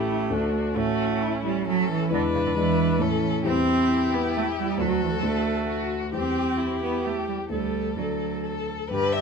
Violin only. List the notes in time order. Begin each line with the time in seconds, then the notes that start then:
Already playing: E4
0.31 D4
0.76 F#4
1.22 E4
1.67 A4
2.12 B4
3.02 A4
3.46 G4
4.80 A4
5.69 F#4
6.15 G4
6.58 E4
7.05 G4
7.51 A4
8.43 A4
8.90 B4
9.13 E5